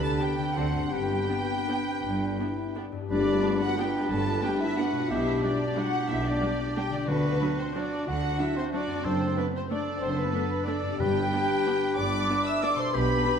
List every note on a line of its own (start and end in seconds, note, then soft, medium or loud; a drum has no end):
0.00 0.15 D2 medium
0.00 0.15 D3 medium
0.00 0.37 D3 medium
0.00 0.51 B3 soft
0.00 0.46 D4 soft
0.00 0.92 D4 medium
0.00 0.56 G4 soft
0.00 0.59 B4 medium
0.00 0.20 A5 medium
0.04 0.21 A4 medium
0.04 0.21 A5 medium
0.20 0.29 B3 soft
0.20 0.35 B3 medium
0.20 0.29 D4 soft
0.20 0.34 D4 soft
0.20 0.56 G4 medium
0.20 0.56 G5 medium
0.38 0.84 D3 medium
0.43 0.87 C4 soft
0.47 0.81 D4 soft
0.52 0.91 A4 soft
0.52 0.91 F#5 medium
0.56 0.86 D2 medium
0.56 0.86 D3 medium
0.56 0.69 C4 soft
0.56 0.65 C4 medium
0.56 0.65 D4 soft
0.56 0.70 D4 soft
0.56 0.92 F#4 medium
0.56 0.94 C5 medium
0.56 0.92 F#5 medium
0.74 2.91 G2 soft
0.78 2.95 B3 soft
0.83 3.00 D4 soft
0.87 3.04 G4 soft
0.92 1.23 G1 medium
0.92 1.23 G2 medium
0.92 2.90 D4 medium
0.92 2.72 G4 medium
0.92 2.94 B4 medium
0.92 2.76 G5 medium
0.92 2.73 G5 medium
1.29 1.37 B3 soft
1.29 1.82 B3 medium
1.29 1.37 D4 soft
1.68 1.76 B3 soft
1.68 1.76 D4 soft
1.86 2.04 C4 medium
2.04 2.34 G1 medium
2.04 2.34 G2 medium
2.04 2.39 D4 medium
2.40 2.48 B3 soft
2.40 2.48 D4 soft
2.40 2.76 E4 medium
2.76 2.85 B3 soft
2.76 2.84 D4 soft
2.76 3.09 D4 medium
2.92 5.02 G2 medium
2.97 4.95 B3 soft
3.01 5.00 D4 soft
3.06 5.04 G4 soft
3.06 3.57 D5 medium
3.10 3.38 G1 medium
3.10 3.38 G2 medium
3.10 3.57 D4 medium
3.10 3.74 D4 medium
3.10 3.58 D4 medium
3.10 3.74 B4 medium
3.10 3.58 D5 medium
3.10 tam-tam medium
3.43 3.51 B3 medium
3.43 3.51 D4 soft
3.61 3.78 F#4 medium
3.61 3.78 F#5 medium
3.78 3.86 B3 medium
3.78 4.41 D4 medium
3.78 3.86 D4 medium
3.78 4.10 G4 medium
3.78 4.41 B4 medium
3.78 4.10 G5 medium
4.10 4.37 G1 medium
4.10 4.37 G2 medium
4.10 4.43 A4 medium
4.10 4.42 A4 medium
4.10 4.42 A5 medium
4.10 4.43 A5 medium
4.42 4.50 B3 soft
4.42 4.50 D4 soft
4.42 5.09 D4 medium
4.42 4.59 G4 medium
4.42 4.61 G4 medium
4.42 5.09 B4 medium
4.42 4.60 G5 medium
4.59 4.77 E4 medium
4.59 4.78 E4 medium
4.59 4.77 E5 medium
4.59 4.78 E5 medium
4.76 4.85 B3 medium
4.76 4.86 D4 medium
4.76 5.10 F#4 medium
4.76 5.09 F#5 medium
4.76 5.10 F#5 medium
4.92 7.00 B2 medium
4.97 7.03 B3 soft
5.01 6.97 D4 soft
5.06 5.42 E4 medium
5.06 5.43 E4 medium
5.06 7.07 G4 soft
5.06 5.43 E5 medium
5.10 5.38 B1 medium
5.10 5.37 B2 medium
5.10 5.43 D4 medium
5.10 5.43 G4 medium
5.10 5.42 E5 medium
5.42 5.51 G3 soft
5.42 5.77 D4 medium
5.42 5.51 D4 soft
5.42 6.73 D4 medium
5.42 5.77 D4 medium
5.42 6.73 G4 medium
5.42 5.76 D5 medium
5.42 5.77 D5 medium
5.76 5.84 G3 medium
5.76 5.84 D4 medium
5.76 6.08 F#4 medium
5.76 6.09 F#4 medium
5.76 6.09 F#5 medium
6.08 6.37 B1 medium
6.08 6.36 B2 medium
6.08 6.25 E4 medium
6.08 6.26 E4 medium
6.08 6.25 E5 medium
6.24 6.75 D4 medium
6.24 6.76 D4 medium
6.24 6.76 D5 medium
6.24 6.53 D5 medium
6.41 6.49 G3 soft
6.41 6.49 D4 soft
6.76 6.84 G3 soft
6.76 6.84 D4 soft
6.76 7.08 D4 medium
6.76 7.10 G4 medium
6.76 6.93 G4 medium
6.76 6.92 G4 medium
6.76 6.83 G5 medium
6.76 6.93 G5 medium
6.90 8.96 D3 medium
6.90 7.07 D4 medium
6.90 7.00 D4 medium
6.90 7.08 D5 medium
6.94 8.90 A3 soft
6.99 8.94 D4 soft
7.03 10.93 F#4 soft
7.08 7.35 D2 medium
7.08 7.54 D3 medium
7.08 7.35 D3 medium
7.08 7.58 B3 medium
7.08 7.57 B3 medium
7.08 7.74 D4 medium
7.08 7.74 F#4 medium
7.08 7.58 B4 medium
7.08 7.57 B4 medium
7.41 7.49 F#3 medium
7.41 7.49 D4 soft
7.58 7.75 C4 medium
7.58 7.75 C5 medium
7.75 7.83 F#3 soft
7.75 8.06 D4 medium
7.75 7.83 D4 medium
7.75 8.07 D4 medium
7.75 8.06 F#4 medium
7.75 8.07 D5 medium
8.07 8.34 D2 medium
8.07 8.33 D3 medium
8.07 8.72 D4 medium
8.07 8.39 F#4 medium
8.07 8.72 F#4 medium
8.07 8.39 F#5 medium
8.39 8.47 F#3 soft
8.39 8.47 D4 soft
8.39 8.56 E4 medium
8.39 8.56 E5 medium
8.39 8.57 E5 medium
8.56 8.73 C4 medium
8.56 8.63 C5 medium
8.56 8.73 C5 medium
8.72 8.81 F#3 soft
8.72 9.04 D4 medium
8.72 8.81 D4 soft
8.72 9.04 D4 medium
8.72 9.05 D4 medium
8.72 9.07 F#4 medium
8.72 9.05 D5 medium
8.72 9.04 D5 medium
8.86 10.92 F#2 soft
8.91 10.94 A3 soft
8.95 10.90 D4 soft
9.00 9.36 C4 medium
9.00 10.99 A4 soft
9.04 9.31 F#1 medium
9.04 9.31 F#2 medium
9.04 9.36 C4 medium
9.04 9.46 D4 medium
9.04 9.47 A4 medium
9.04 9.36 C5 medium
9.04 9.37 C5 medium
9.36 9.45 A3 soft
9.36 9.53 B3 medium
9.36 9.54 B3 medium
9.36 9.45 D4 soft
9.36 9.53 B4 medium
9.36 9.44 B4 medium
9.54 9.70 C4 medium
9.54 9.70 C5 medium
9.54 9.62 C5 medium
9.70 9.79 A3 medium
9.70 10.00 D4 medium
9.70 10.62 D4 medium
9.70 10.02 D4 medium
9.70 9.79 D4 medium
9.70 10.62 A4 medium
9.70 10.01 D5 medium
10.00 10.27 F#1 medium
10.00 10.28 F#2 medium
10.00 10.16 C4 medium
10.00 10.08 C4 medium
10.00 10.16 C5 medium
10.00 10.08 C5 medium
10.15 10.65 B3 medium
10.15 10.52 B3 medium
10.15 10.66 B4 medium
10.34 10.42 A3 soft
10.34 10.42 D4 soft
10.65 10.75 A3 soft
10.65 10.99 D4 medium
10.65 11.00 D4 medium
10.65 10.99 D4 medium
10.65 10.75 D4 medium
10.65 11.02 A4 medium
10.65 10.99 D5 medium
10.65 11.00 D5 medium
10.82 12.86 G2 medium
10.86 13.39 B3 soft
10.91 12.78 D4 soft
10.95 12.83 G4 soft
10.95 11.95 G4 medium
10.95 11.95 G5 medium
10.99 11.26 G1 medium
10.99 11.45 G2 medium
10.99 11.27 G2 medium
10.99 11.96 D4 medium
10.99 11.95 G4 medium
10.99 11.97 B4 medium
10.99 11.95 G5 loud
11.33 11.41 B3 soft
11.33 11.41 D4 soft
11.66 11.74 B3 medium
11.66 11.74 D4 medium
11.96 12.24 G1 medium
11.96 12.24 G2 medium
11.96 12.92 D4 medium
11.96 12.65 B4 medium
11.96 12.46 D5 medium
11.96 12.47 D5 medium
11.96 12.44 D6 loud
11.96 12.46 D6 medium
12.30 12.38 B3 soft
12.30 12.38 D4 soft
12.46 12.62 E5 medium
12.46 12.63 E5 medium
12.46 12.62 E6 medium
12.62 12.71 B3 medium
12.62 12.71 D4 medium
12.62 12.96 A4 medium
12.62 12.78 D5 medium
12.62 12.78 D6 medium
12.75 13.39 B2 soft
12.75 12.93 C5 medium
12.75 12.94 C5 medium
12.75 12.93 C6 medium
12.80 13.39 D4 soft
12.84 13.39 G4 soft
12.92 13.20 B1 medium
12.92 13.20 B2 medium
12.92 13.39 D4 medium
12.92 13.39 G4 medium
12.92 13.39 B4 medium
12.92 13.39 B5 medium
13.26 13.34 G3 soft
13.26 13.34 D4 soft